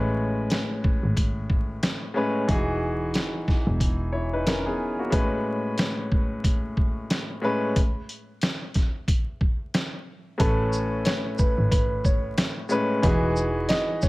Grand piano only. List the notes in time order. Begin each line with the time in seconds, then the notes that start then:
Already playing: A2 G#3 C#4 B4
2.14 A2 G#3 C#4 B4
2.48 E3 D#4 F#4 G#4
4.12 E4 C#5
4.33 D#4 B4
4.47 C#4 A#4
4.66 B3 G#4
4.99 A#3 F#4
5.10 A2 G#3 C#4 B4
7.42 A2 G#3 C#4 B4
10.38 A2 A3 C#4 B4
12.69 A2 G#3 C#4 B4
13.02 E3 D#4 F#4 G#4